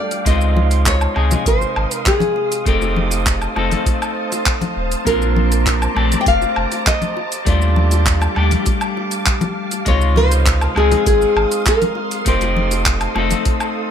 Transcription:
Already playing: G3 A3 D4 G4 A4 D5 F5 G5 D6
0.11 open hi-hat, high bongo, shaker
0.25 C#2 G#3 C4 D#4 F4 D#5 C6 D#6, kick, open hi-hat, shaker
0.41 shaker
0.56 high bongo, high conga
0.71 open hi-hat, shaker
0.86 C#5, kick, clap, open hi-hat, high bongo, shaker
1.01 low woodblock, shaker
1.14 C#2 C3 G#3 D#4 G#4, low woodblock
1.31 open hi-hat, high bongo, high conga, low conga, shaker
1.46 G#1 C5, kick, open hi-hat, shaker
1.61 high bongo, shaker
1.76 G#1, low woodblock
1.91 A#4, open hi-hat, shaker
2.06 G#4, kick, clap, open hi-hat, high bongo, shaker
2.20 open hi-hat, high conga, shaker
2.36 high bongo
2.52 open hi-hat, shaker
2.65 F1 A3 C4 D#4 G4 A4 C5 F5 A5, kick, open hi-hat, shaker
2.82 high bongo, shaker
2.96 high conga
3.11 open hi-hat, high bongo, shaker
3.26 kick, clap, open hi-hat, shaker
3.42 low woodblock, shaker
3.56 F1 A3 C4 D#4 A4, high bongo, low woodblock
3.72 open hi-hat, high conga, low conga, shaker
3.86 kick, open hi-hat, high bongo, shaker
4.02 low woodblock, shaker
4.32 open hi-hat, high bongo, shaker
4.46 kick, clap, open hi-hat, shaker
4.61 open hi-hat, high bongo, high conga, shaker
4.77 D#1
4.92 open hi-hat, shaker
5.05 A#1 A#3 C4 D4 F4 A#4 A#5 D6, kick, open hi-hat, shaker
5.22 high bongo, shaker
5.36 high conga
5.52 open hi-hat, shaker
5.66 kick, clap, open hi-hat, high bongo, shaker
5.82 low woodblock, shaker
5.95 A#1 A3 C4 D4 G4, high bongo, low woodblock
6.12 open hi-hat, high conga, low conga, shaker
6.21 G5
6.26 F1 F5, kick, open hi-hat, shaker
6.42 high bongo, shaker
6.56 F1, low woodblock
6.72 open hi-hat, high bongo, shaker
6.87 D#5, kick, clap, open hi-hat, shaker
7.02 open hi-hat, high conga, shaker
7.16 G4 F5 D6, high bongo
7.32 open hi-hat, shaker
7.45 D#2 G3 A3 D4 F4 D5, kick, open hi-hat, high bongo, shaker
7.62 shaker
7.76 high conga
7.91 open hi-hat, high bongo, shaker
8.06 kick, clap, open hi-hat, shaker
8.21 high bongo, low woodblock, shaker
8.35 D#2 G3 A3 D4 G4, low woodblock
8.51 open hi-hat, high conga, low conga, shaker
8.66 kick, open hi-hat, high bongo, shaker
8.81 low woodblock, shaker
8.97 high bongo
9.11 open hi-hat, shaker
9.26 kick, clap, open hi-hat, shaker
9.41 open hi-hat, high bongo, high conga, shaker
9.71 open hi-hat, high bongo, shaker
9.85 C#2 C3 G#3 D#4 F4 C#5 C6 D#6, kick, open hi-hat, shaker
10.01 shaker
10.16 C5, high bongo, high conga
10.31 open hi-hat, shaker
10.46 kick, clap, open hi-hat, high bongo, shaker
10.61 low woodblock, shaker
10.75 C#2 G#3 C4 D#4 G#4, low woodblock
10.91 open hi-hat, high bongo, high conga, low conga, shaker
11.06 G#1 G#4, kick, open hi-hat, shaker
11.21 high bongo, shaker
11.36 G#1, low woodblock
11.52 open hi-hat, shaker
11.66 A#4, kick, clap, open hi-hat, high bongo, shaker
11.82 open hi-hat, high conga, shaker
11.95 high bongo
12.11 open hi-hat, shaker
12.25 F1 A3 C4 D#4 G4 A4 C5 D#6, kick, open hi-hat, shaker
12.41 open hi-hat, high bongo, shaker
12.56 high conga
12.71 open hi-hat, high bongo, shaker
12.86 kick, clap, open hi-hat, shaker
13.01 open hi-hat, low woodblock, shaker
13.15 F1 A3 C4 D#4 A4, high bongo, low woodblock
13.31 open hi-hat, high conga, low conga, shaker
13.45 kick, open hi-hat, high bongo, shaker
13.60 low woodblock, shaker

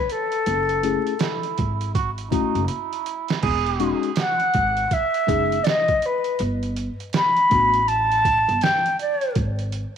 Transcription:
Already playing: B4
0.10 A4, closed hi-hat
0.32 closed hi-hat
0.46 F#1, closed hi-hat
0.69 closed hi-hat
0.83 A3 C#4 E4 G#4, closed hi-hat
1.07 closed hi-hat
1.19 E4, snare, closed hi-hat
1.43 closed hi-hat
1.58 G#1, kick, closed hi-hat
1.81 closed hi-hat
1.95 F#4, kick, closed hi-hat
2.18 closed hi-hat
2.31 A3 C#4 D#4 E4 F#4, kick, closed hi-hat
2.55 F#1, closed hi-hat
2.68 E4, closed hi-hat
2.93 closed hi-hat
3.06 closed hi-hat
3.28 snare, closed hi-hat
3.43 E1 G#4, kick, crash
3.66 closed hi-hat
3.80 G#3 C#4 D#4 F#4, closed hi-hat
4.03 closed hi-hat
4.16 F#5, snare, closed hi-hat
4.40 closed hi-hat
4.54 G#1, kick, closed hi-hat
4.77 closed hi-hat
4.91 E5, kick, closed hi-hat
5.14 closed hi-hat
5.27 F#1 G#3 C#4 D#4 G#4, kick, closed hi-hat
5.52 closed hi-hat
5.63 D5, snare, closed hi-hat
5.69 D#5
5.88 kick, closed hi-hat
6.02 B4, closed hi-hat
6.24 closed hi-hat
6.39 G1, closed hi-hat
6.63 closed hi-hat
6.76 closed hi-hat
7.00 closed hi-hat
7.13 B5, snare, closed hi-hat
7.37 closed hi-hat
7.50 A1 A3 B3 D4 F#4, kick, closed hi-hat
7.74 closed hi-hat
7.87 A5, closed hi-hat
8.12 closed hi-hat
8.25 kick, closed hi-hat
8.48 G1, closed hi-hat
8.61 G5, snare, closed hi-hat
8.86 closed hi-hat
8.99 D5, closed hi-hat
9.21 closed hi-hat
9.35 G#1, kick, closed hi-hat
9.59 closed hi-hat
9.72 closed hi-hat

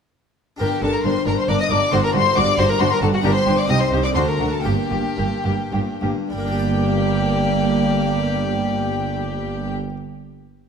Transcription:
0.56 D4 G4 A#4
0.60 G1 G2 D4 G5
0.82 G1 G2 D4 A4 A#4 A5
0.93 A#4 A#5
1.04 G1 G2 D4 A#4 C5 C6
1.26 G1 G2 D4 A#4 A#5
1.37 C5 C6
1.48 G1 G2 D4 A#4 D5 D6
1.60 D#5 D#6
1.70 G1 G2 D4 A#4 D5 D6
1.89 G2 D4 F#4 A4
1.93 G1 G2 C5 C6
2.04 A#4 A#5
2.14 G1 G2 D4 F#4 C5 C6
2.35 G1 G2 D4 F#4 D5 D6
2.58 G1 G2 D4 F#4 C5 C6
2.70 A#4 A#5
2.80 G1 G2 D4 F#4 C5 C6
2.92 A#4 A#5
3.01 G1 G2 D4 F#4 A4 A5
3.14 F#4 F#5
3.20 D4 G4
3.24 G1 G2 A#4 A#5
3.36 C5 C6
3.46 G1 G2 D4 G4
3.58 D5 D6
3.65 C4 D#4 G4
3.69 C2 D#4 D#5 D#6
3.80 C5 C6
3.92 C2 D#4 G4
4.04 D5 D6
4.12 D2 A3 D4 F#4 C5 C6
4.16 D2 D4
4.28 A#4 A#5
4.39 D2 D4 F#4
4.52 A4 A5
4.61 A#3 D4 G4 G5
4.65 G1 G2 A#3 G4
4.90 G1 G2 A#3 G4
5.17 G1 G2 A#3 G4
5.44 G1 G2 A#3 G4
5.72 G1 G2 A#3 G4
6.01 G1 G2 A#3 G4
6.30 G1 G2 G3 A#3 G4 D5 G5
6.38 A#3
6.45 D4
6.51 G4
6.58 D5

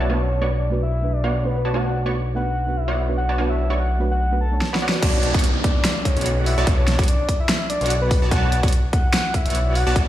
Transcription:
Already playing: B1 E5, downlifter
0.00 B3 F#4 C#5 D5 A5
0.08 A3 B3 D4 F#4 B4 C#5 D5 A5
0.21 C#5
0.40 A3 B3 D4 F#4 B4 C#5 D5 C#6
0.51 D5
0.70 A3 B3 D4 F#4 B4
0.83 E5
1.02 A3 B3 D4 F#4 B4
1.12 D5
1.24 B3 F#4 C#5 D5 F#5
1.43 A3 B3 D4 F#4 B4
1.65 B3 F#4 C#5 D5 A5
1.73 A3 B3 D4 F#4 B4 C#5 D5 F#5 A5
2.05 A3 B3 D4 F#4 B4 C#5 D5 C#6
2.35 A3 B3 D4 F#4 B4 F#5
2.67 A3 B3 D4 F#4 B4
2.77 E5
2.88 B3 F#4 C#5 D5 F#5
3.08 A3 B3 D4 F#4 B4
3.18 F#5
3.29 B3 F#4 C#5 D5 A5
3.37 A3 B3 D4 F#4 B4 C#5 D5 A5
3.50 E5
3.69 A3 B3 D4 F#4 B4 C#5 D5 C#6
3.79 F#5
3.99 A3 B3 D4 F#4 B4
4.11 F#5
4.31 A3 B3 D4 F#4 B4
4.41 A5
4.51 A3 B3 D4 F#4 C#5
4.61 snare
4.73 B3 F#4 C#5 D5 B5, snare
4.82 B3 F#4 C#5 D5 F#5
4.89 snare
5.02 B1 B3 F#4 C#5 D5 A5, kick, closed hi-hat, crash, downlifter
5.23 closed hi-hat
5.34 B1 B3 F#4 C#5 D5 C#6, kick, closed hi-hat
5.39 closed hi-hat
5.44 closed hi-hat
5.64 D5, kick, closed hi-hat
5.85 snare, closed hi-hat
6.05 C#5, kick, closed hi-hat
6.17 B1 B3 F#4 C#5 D5 F#5, closed hi-hat
6.21 closed hi-hat
6.26 closed hi-hat
6.46 E5, open hi-hat
6.58 B1 B3 F#4 C#5 D5 A5
6.67 B1 B3, kick, closed hi-hat
6.78 C#5
6.88 snare, closed hi-hat
6.99 B1 B3 F#4 C#5 D5 C#6, kick, closed hi-hat
7.03 closed hi-hat
7.08 D5, closed hi-hat
7.29 kick, closed hi-hat
7.40 E5
7.49 snare, closed hi-hat
7.70 D5, closed hi-hat
7.81 B1 B3 F#4 C#5 D5 F#5, closed hi-hat
7.86 closed hi-hat
7.90 closed hi-hat
8.02 B4
8.11 kick, open hi-hat
8.22 B1 B3 F#4 C#5 D5 A5
8.31 B1 B3 F#4 C#5 D5 F#5 A5, kick, closed hi-hat
8.52 closed hi-hat
8.63 B1 B3 F#4 C#5 D5 C#6, kick, closed hi-hat
8.68 closed hi-hat
8.73 closed hi-hat
8.93 F#5, kick, closed hi-hat
9.14 snare, closed hi-hat
9.34 E5, kick, closed hi-hat
9.45 B1 B3 F#4 C#5 D5 F#5, closed hi-hat
9.50 closed hi-hat
9.55 closed hi-hat
9.75 F#5, open hi-hat
9.87 B1 B3 F#4 C#5 D5 A5
9.96 B1 B3 F#4 C#5 D5 A5, kick, closed hi-hat

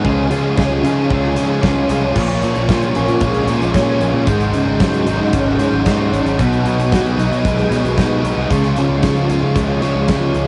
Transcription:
0.03 C#2 C#3 F3 G#3 C#4 F4 G#4 C#5 F5 C#6, kick
0.29 C#3 F3 G#3 C#4 F4 G#4, closed hi-hat
0.56 C#2 C#3 F3 G#3 C#4 F4 G#4, kick, snare
0.83 C#3 F3 G#3 C#4 F4 G#4, closed hi-hat
1.10 C#2 C#3 F3 G#3 C#4 F4 G#4, kick
1.36 C#3 F3 G#3 C#4 F4 G#4, closed hi-hat
1.62 C#2 C#3 F3 G#3 C#4 F4 G#4, kick, snare
1.67 C#4
1.89 C2 G#3 C#4 F4 G#4, closed hi-hat
1.93 F3
2.14 A#1 A#2 F3 A#3 C#4 F4 A#4 C#5 G#5 C#6, kick, crash
2.29 closed hi-hat
2.42 A#2 F3, closed hi-hat
2.55 A#1, closed hi-hat
2.68 A#2 F3 A#3 C#4 F4 C#5, kick, snare, closed hi-hat
2.82 closed hi-hat
2.95 A#1 A#3 C#4 F4 C#5, closed hi-hat
3.08 A#2, closed hi-hat
3.20 A#1 G#3, kick, closed hi-hat
3.34 closed hi-hat
3.47 A#2 F3 A#3 C#4 F4 C#5, closed hi-hat
3.62 A#1, closed hi-hat
3.74 A#2 A#3 C#4 F4 C#5, kick, snare, closed hi-hat
4.00 A#1 G#3, closed hi-hat
4.14 A#2
4.26 G#1 G#2 G#3 D#4 F#4 G#4 C5 F#5 G#5, kick, closed hi-hat
4.41 closed hi-hat
4.52 G#2 C#3, closed hi-hat
4.66 G#1
4.80 G#2 F#3 G#3 D#4 F#4 C5, kick, snare, closed hi-hat
4.94 closed hi-hat
5.06 G#1 D#4 F#4 C5, closed hi-hat
5.20 G#2
5.33 G#1 C#4, kick, closed hi-hat
5.59 G#2 F#3 D#4 F#4 C5, closed hi-hat
5.72 G#1
5.85 G#2 G#3 D#4 F#4 C5, kick, snare, closed hi-hat
6.11 G#1 C#4, closed hi-hat
6.24 G#1, closed hi-hat
6.38 B1 B2 F#3 B3 D#4 F#4 B4 G#5 D#6, kick, closed hi-hat
6.53 closed hi-hat
6.65 B2 F#3, closed hi-hat
6.78 B1, closed hi-hat
6.91 B2 F#3 B3 D#4 F#4 B4, kick, snare, closed hi-hat
7.06 closed hi-hat
7.17 B1 B3 D#4 F#4 B4, closed hi-hat
7.31 B2, closed hi-hat
7.45 B1 G#3, kick, closed hi-hat
7.59 closed hi-hat
7.70 B2 F#3 B3 D#4 F#4 B4, snare, closed hi-hat
7.84 B1, closed hi-hat
7.97 B2 B3 D#4 F#4 B4, kick, snare, closed hi-hat
8.23 B1 G#3, closed hi-hat
8.36 C2
8.50 C#2 C#3 F3 G#3 C#4 F4 C#5 F5 C#6, kick, closed hi-hat
8.64 closed hi-hat
8.76 C#3 F3, closed hi-hat
8.89 C#2
9.02 C#3 F3 G#3 C#4 F4 C#5, kick, snare, closed hi-hat
9.16 closed hi-hat
9.29 C#2 G#3 C#4 F4 C#5, closed hi-hat
9.43 C#3
9.55 C#2 G#3, kick, closed hi-hat
9.82 C#3 F3 G#3 C#4 F4 C#5, snare, closed hi-hat
9.95 C#2
10.08 C#3 G#3 C#4 F4 C#5, kick, snare, closed hi-hat
10.34 C#2 G#3, closed hi-hat

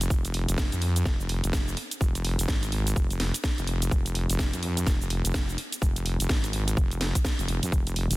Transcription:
0.01 closed hi-hat, cabasa
0.10 F1, kick, cabasa
0.25 closed hi-hat, cabasa
0.34 open hi-hat
0.49 F1, closed hi-hat, cabasa
0.58 kick, snare, cabasa
0.72 F2, closed hi-hat, cabasa
0.82 open hi-hat
0.96 closed hi-hat, cabasa
1.06 F1, kick, snare, cabasa
1.20 F1, cabasa
1.29 open hi-hat
1.44 F1, closed hi-hat, cabasa
1.53 kick, snare, cabasa
1.68 cabasa
1.77 open hi-hat
1.91 closed hi-hat, cabasa
2.01 F1, kick, cabasa
2.15 closed hi-hat, cabasa
2.25 open hi-hat
2.39 F1, closed hi-hat, cabasa
2.48 G#1, kick, snare, cabasa
2.63 closed hi-hat, cabasa
2.72 open hi-hat
2.87 closed hi-hat, cabasa
2.96 F1, kick, cabasa
3.10 F1, closed hi-hat, cabasa
3.20 snare, open hi-hat
3.34 closed hi-hat, cabasa
3.44 kick, snare, cabasa
3.58 F1, closed hi-hat, cabasa
3.67 open hi-hat
3.82 closed hi-hat, cabasa
3.91 F1, kick, cabasa
4.06 closed hi-hat, cabasa
4.15 open hi-hat
4.30 F1, closed hi-hat, cabasa
4.39 kick, snare, cabasa
4.53 F2, closed hi-hat, cabasa
4.63 open hi-hat
4.77 closed hi-hat, cabasa
4.87 F1, kick, snare, cabasa
5.01 F1, cabasa
5.10 open hi-hat
5.25 F1, closed hi-hat, cabasa
5.34 kick, snare, cabasa
5.49 cabasa
5.58 open hi-hat
5.72 closed hi-hat, cabasa
5.82 F1, kick, cabasa
5.96 closed hi-hat, cabasa
6.06 open hi-hat
6.20 F1, closed hi-hat, cabasa
6.29 G#1, kick, snare, cabasa
6.44 closed hi-hat, cabasa
6.53 open hi-hat
6.68 closed hi-hat, cabasa
6.77 F1, kick, cabasa
6.91 closed hi-hat, cabasa
7.01 snare, open hi-hat
7.15 kick, closed hi-hat, cabasa
7.25 kick, snare, cabasa
7.39 F1, closed hi-hat, cabasa
7.48 F1, open hi-hat
7.63 F2, closed hi-hat, cabasa
7.72 F1, kick, cabasa
7.87 closed hi-hat, cabasa
7.96 open hi-hat
8.10 F1, closed hi-hat, cabasa

